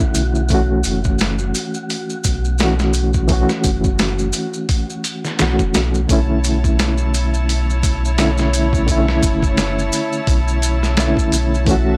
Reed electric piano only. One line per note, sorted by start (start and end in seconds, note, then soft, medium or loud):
0.00 0.47 D3 medium
0.00 0.47 A3 medium
0.00 0.47 C#4 medium
0.00 0.48 E4 medium
0.49 2.55 E3 medium
0.49 2.56 A3 medium
0.49 2.57 C#4 medium
0.54 2.58 F#4 medium
2.60 3.26 E3 medium
2.60 3.27 A3 medium
2.60 3.27 C#4 medium
2.60 3.28 F#4 medium
3.28 5.34 E3 medium
3.28 5.35 A3 medium
3.28 5.36 C#4 medium
3.33 5.37 F#4 medium
5.39 6.05 E3 medium
5.39 6.06 A3 medium
5.39 6.06 C#4 medium
5.39 6.07 F#4 medium
6.06 8.13 D3 medium
6.06 8.15 A3 medium
6.11 8.16 C#4 medium
6.11 8.16 E4 medium
8.18 8.84 D3 medium
8.18 8.84 A3 medium
8.18 8.85 C#4 medium
8.18 8.86 E4 medium
8.86 10.93 D3 medium
8.86 10.94 A3 medium
8.90 10.95 C#4 medium
8.90 10.96 E4 medium
10.97 11.63 D3 medium
10.97 11.64 A3 medium
10.97 11.64 C#4 medium
10.97 11.65 E4 medium
11.65 11.97 E3 medium
11.65 11.97 A3 medium
11.69 11.97 C#4 medium
11.69 11.97 F#4 medium